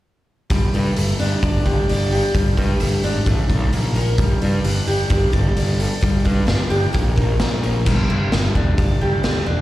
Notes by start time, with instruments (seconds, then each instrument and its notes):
0.50 picked electric bass G1, steel-string acoustic guitar G3, kick, open hi-hat
0.74 picked electric bass G2, steel-string acoustic guitar A3, open hi-hat
0.96 picked electric bass G1, steel-string acoustic guitar A3, open hi-hat
1.19 picked electric bass G1, steel-string acoustic guitar D4, open hi-hat
1.43 picked electric bass G1, steel-string acoustic guitar D5, kick, open hi-hat
1.66 picked electric bass G1, steel-string acoustic guitar G4, kick, open hi-hat
1.89 picked electric bass G1, steel-string acoustic guitar D5, open hi-hat
2.12 steel-string acoustic guitar G4, open hi-hat
2.34 picked electric bass G1, steel-string acoustic guitar G3, kick, open hi-hat
2.57 picked electric bass G2, steel-string acoustic guitar A3, kick, open hi-hat
2.80 picked electric bass G1, steel-string acoustic guitar A3, open hi-hat
3.03 picked electric bass G#1, steel-string acoustic guitar D4, open hi-hat
3.26 picked electric bass A1, steel-string acoustic guitar A3, kick, open hi-hat
3.50 picked electric bass B1, steel-string acoustic guitar A4, kick, open hi-hat
3.73 picked electric bass A#1, steel-string acoustic guitar A#3, open hi-hat
3.95 steel-string acoustic guitar A#4, open hi-hat
4.18 picked electric bass G1, steel-string acoustic guitar G3, kick, open hi-hat
4.41 picked electric bass G2, steel-string acoustic guitar D4, open hi-hat
4.64 picked electric bass G1, steel-string acoustic guitar D4, open hi-hat
4.87 picked electric bass G1, steel-string acoustic guitar G4, open hi-hat
5.10 picked electric bass G1, steel-string acoustic guitar D5, kick, open hi-hat
5.32 picked electric bass G1, steel-string acoustic guitar A4, kick, open hi-hat
5.55 picked electric bass G1, steel-string acoustic guitar D5, open hi-hat
5.80 steel-string acoustic guitar A4, open hi-hat
6.01 picked electric bass G1, steel-string acoustic guitar G3, kick, open hi-hat
6.25 picked electric bass G2, steel-string acoustic guitar D4, kick, open hi-hat
6.47 picked electric bass G1, steel-string acoustic guitar D4, snare, open hi-hat
6.70 picked electric bass G1, steel-string acoustic guitar G4, open hi-hat
6.93 picked electric bass A#1, steel-string acoustic guitar A#3, kick, open hi-hat
7.16 picked electric bass A#1, steel-string acoustic guitar A#4, kick, open hi-hat
7.40 picked electric bass A#1, steel-string acoustic guitar A#3, snare, open hi-hat
7.63 steel-string acoustic guitar A#4, open hi-hat
7.86 picked electric bass G1, steel-string acoustic guitar G3, kick, crash
8.10 picked electric bass G1, steel-string acoustic guitar A3
8.32 picked electric bass G1, steel-string acoustic guitar A3, snare, open hi-hat
8.55 picked electric bass E1, steel-string acoustic guitar D4, kick
8.78 picked electric bass G1, steel-string acoustic guitar D5, kick, open hi-hat
9.01 picked electric bass G1, steel-string acoustic guitar G4
9.23 picked electric bass D2, steel-string acoustic guitar A3, snare, open hi-hat
9.46 picked electric bass E1, steel-string acoustic guitar D4